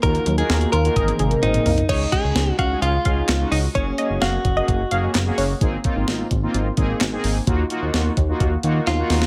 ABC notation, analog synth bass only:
X:1
M:4/4
L:1/16
Q:1/4=129
K:Db
V:1 name="Analog synth bass" clef=bass
E,,2 E,,2 E,,2 E,,2 A,,,2 A,,,2 A,,,2 C,,2 | D,,2 z D,, D,,2 D,,2 D,,2 D,,2 D,,2 D,,2 | G,,,2 z G,,, G,,,2 G,,,2 G,,,2 G,,,2 G,,,2 G,,,2 | A,,,2 z A,,, A,,,2 A,,,2 A,,,2 A,,,2 A,,,2 A,,,2 |
E,,2 z E,, E,,2 E,,2 E,,2 E,,2 E,,2 E,,2 |]